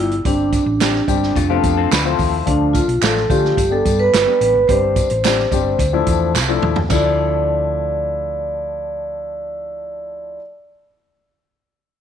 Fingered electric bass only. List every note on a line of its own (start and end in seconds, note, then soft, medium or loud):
0.00 0.19 G1 medium
0.25 0.58 G1 loud
0.66 1.00 A1 loud
1.08 1.30 G1 medium
1.35 1.58 F1 loud
1.64 1.86 F2 loud
1.91 2.14 D2 loud
2.19 2.42 D#2 medium
2.47 2.80 D2 loud
2.88 3.00 B1 medium
3.02 3.24 A1 medium
3.29 3.52 D3 medium
3.57 3.80 G1 medium
3.85 4.08 G2 medium
4.13 4.24 G1 medium
4.41 4.52 A1 medium
4.55 4.66 G#1 medium
4.69 5.02 G1 loud
5.11 5.44 A1 medium
5.51 5.74 G1 loud
5.79 6.01 D2 medium
6.07 6.36 E2 medium
6.34 6.57 C2 medium
6.62 6.85 D#2 medium
6.90 10.37 D2 loud